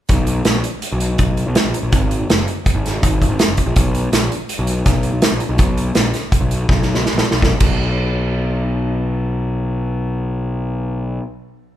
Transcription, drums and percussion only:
0.09 kick, closed hi-hat
0.27 closed hi-hat
0.45 snare, closed hi-hat
0.64 closed hi-hat
0.82 closed hi-hat
1.00 closed hi-hat
1.18 kick, closed hi-hat
1.37 closed hi-hat
1.55 snare, closed hi-hat
1.74 closed hi-hat
1.92 kick, closed hi-hat
2.11 closed hi-hat
2.30 snare, closed hi-hat
2.48 closed hi-hat
2.66 kick, closed hi-hat
2.86 snare, closed hi-hat
3.03 kick, closed hi-hat
3.22 kick, closed hi-hat
3.39 snare, closed hi-hat
3.57 kick, closed hi-hat
3.76 kick, closed hi-hat
3.95 closed hi-hat
4.13 snare, closed hi-hat
4.32 closed hi-hat
4.49 closed hi-hat
4.67 closed hi-hat
4.86 kick, snare, closed hi-hat
5.03 closed hi-hat
5.22 snare, closed hi-hat
5.40 closed hi-hat
5.58 kick, closed hi-hat
5.77 closed hi-hat
5.95 snare, closed hi-hat
6.14 snare, closed hi-hat
6.32 kick, closed hi-hat
6.51 closed hi-hat
6.69 kick, snare
6.82 snare
6.94 snare
7.06 snare
7.18 snare
7.31 snare
7.42 kick, snare
7.60 kick, crash

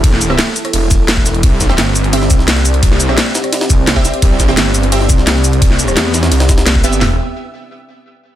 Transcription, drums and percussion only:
0.04 kick, closed hi-hat, ride
0.13 snare
0.21 closed hi-hat, ride, shaker
0.30 cross-stick
0.39 snare, closed hi-hat, ride
0.47 cross-stick
0.56 closed hi-hat, ride, shaker
0.65 cross-stick, closed hi-hat
0.73 closed hi-hat, ride
0.91 kick, closed hi-hat, ride, shaker
1.08 snare, closed hi-hat, ride
1.17 kick
1.26 snare, closed hi-hat, ride, shaker
1.34 closed hi-hat
1.43 kick, closed hi-hat, ride
1.61 kick, snare, closed hi-hat, ride, shaker
1.69 cross-stick, snare
1.78 snare, closed hi-hat, ride
1.87 cross-stick
1.96 closed hi-hat, ride, shaker
2.04 closed hi-hat
2.13 closed hi-hat, ride
2.22 snare
2.30 kick, closed hi-hat, ride, shaker
2.39 snare
2.48 snare, closed hi-hat, ride
2.57 snare
2.65 closed hi-hat, ride, shaker
2.74 closed hi-hat, ride
2.83 kick, closed hi-hat, ride
2.92 snare
3.00 closed hi-hat, ride, shaker
3.09 cross-stick
3.18 snare, closed hi-hat, ride
3.26 cross-stick
3.35 snare, closed hi-hat, ride, shaker
3.44 cross-stick, closed hi-hat
3.53 snare, closed hi-hat, ride
3.61 snare, ride
3.70 kick, closed hi-hat, ride, shaker
3.87 snare, closed hi-hat, ride
3.96 kick
4.05 snare, closed hi-hat, ride, shaker
4.14 closed hi-hat
4.22 kick, closed hi-hat, ride
4.40 kick, snare, closed hi-hat, ride, shaker
4.48 cross-stick, snare
4.57 snare, closed hi-hat, ride
4.66 cross-stick
4.75 closed hi-hat, ride, shaker
4.83 closed hi-hat
4.92 closed hi-hat, ride
5.01 snare
5.09 kick, closed hi-hat, ride, shaker
5.18 snare
5.27 snare, closed hi-hat, ride
5.36 snare
5.44 closed hi-hat, ride, shaker
5.53 closed hi-hat, ride
5.62 kick, closed hi-hat, ride
5.71 snare
5.79 closed hi-hat, ride, shaker
5.88 cross-stick, shaker
5.97 snare, closed hi-hat, ride
6.05 cross-stick
6.14 snare, closed hi-hat, ride, shaker
6.23 cross-stick, snare, closed hi-hat, ride
6.32 snare, closed hi-hat, ride
6.40 snare, closed hi-hat, ride
6.49 kick, snare, closed hi-hat, ride, shaker
6.58 snare, ride
6.66 snare, closed hi-hat, ride
6.75 kick
6.84 closed hi-hat, ride, shaker
6.93 closed hi-hat, shaker
7.01 snare, floor tom, open hi-hat

